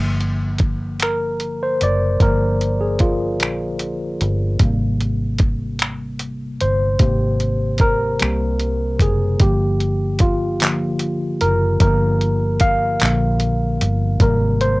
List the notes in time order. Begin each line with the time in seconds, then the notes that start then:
Already playing: G1 D3 F3 A#3
0.21 closed hi-hat
0.58 kick, closed hi-hat
1.00 A#4, finger snap, closed hi-hat
1.40 closed hi-hat
1.63 C5
1.81 F#1 D5, closed hi-hat
2.20 G1 D3 F3 A#3 A#4, kick, closed hi-hat
2.61 closed hi-hat
2.81 G#4
2.99 F4, kick, closed hi-hat
3.40 A#1, finger snap, closed hi-hat
3.79 closed hi-hat
4.21 G1, closed hi-hat
4.59 G#1 C3 G3 A#3, kick, closed hi-hat
5.00 closed hi-hat
5.38 kick, closed hi-hat
5.79 finger snap, closed hi-hat
6.19 closed hi-hat
6.61 G1 C5, closed hi-hat
6.99 G#1 C3 A#3 G4, kick, closed hi-hat
7.40 closed hi-hat
7.78 A#4, kick, closed hi-hat
8.20 C2 C3 G3 A#3, finger snap, closed hi-hat
8.60 closed hi-hat
8.99 F#1 G#4, kick, closed hi-hat
9.40 G1 D3 F3 A#3 G4, kick, closed hi-hat
9.80 closed hi-hat
10.19 F4, kick, closed hi-hat
10.60 D3 F3 A#3, clap, closed hi-hat
10.99 closed hi-hat
11.41 F#1 A#4, closed hi-hat
11.80 G1 D3 F3 A#3 A#4, kick, closed hi-hat
12.21 closed hi-hat
12.60 F5, kick, closed hi-hat
13.00 A#1 D3 F3 A#3, clap, closed hi-hat
13.40 closed hi-hat
13.81 G1, closed hi-hat
14.20 G#1 C3 G3 A#3 A#4, kick, closed hi-hat
14.61 C5, closed hi-hat